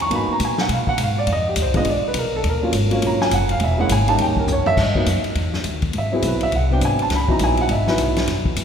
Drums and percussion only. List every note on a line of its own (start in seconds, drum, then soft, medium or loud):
0.11 kick soft
0.11 ride medium
0.40 kick soft
0.40 hi-hat pedal medium
0.40 ride medium
0.58 snare medium
0.69 kick soft
0.69 ride medium
0.87 kick medium
0.98 kick soft
0.98 hi-hat pedal medium
0.98 ride medium
1.27 kick soft
1.27 ride medium
1.56 kick soft
1.56 hi-hat pedal medium
1.56 ride medium
1.74 kick medium
1.74 ride medium
1.85 kick soft
1.85 ride medium
2.14 kick soft
2.14 hi-hat pedal medium
2.14 ride medium
2.44 kick soft
2.44 ride medium
2.73 kick soft
2.73 hi-hat pedal medium
2.73 ride medium
2.91 ride medium
3.02 kick soft
3.02 ride medium
3.21 snare soft
3.31 kick soft
3.31 hi-hat pedal medium
3.31 ride medium
3.49 ride medium
3.60 kick soft
3.60 ride medium
3.89 kick soft
3.89 hi-hat pedal medium
3.89 ride medium
4.08 ride medium
4.18 kick soft
4.18 ride medium
4.37 kick medium
4.48 floor tom medium
4.48 hi-hat pedal medium
4.66 floor tom medium
4.77 kick medium
4.77 snare soft
4.77 crash medium
4.95 kick medium
5.06 kick soft
5.06 hi-hat pedal medium
5.06 ride medium
5.24 ride soft
5.35 kick soft
5.35 ride medium
5.54 snare soft
5.64 kick soft
5.64 hi-hat pedal medium
5.64 ride medium
5.82 kick medium
5.82 ride soft
5.93 kick soft
5.93 ride medium
6.22 kick soft
6.22 hi-hat pedal medium
6.22 ride medium
6.41 ride soft
6.52 kick soft
6.52 ride medium
6.81 kick soft
6.81 hi-hat pedal medium
6.81 ride medium
6.99 ride medium
7.10 kick soft
7.10 snare soft
7.10 ride medium
7.29 kick medium
7.39 kick soft
7.39 hi-hat pedal medium
7.39 ride medium
7.57 ride soft
7.69 kick soft
7.69 ride medium
7.87 snare soft
7.98 kick soft
7.98 hi-hat pedal soft
7.98 ride medium
8.16 snare medium
8.16 ride medium
8.27 kick soft
8.27 snare soft
8.27 ride medium
8.46 kick medium
8.56 kick soft
8.56 hi-hat pedal medium
8.56 ride medium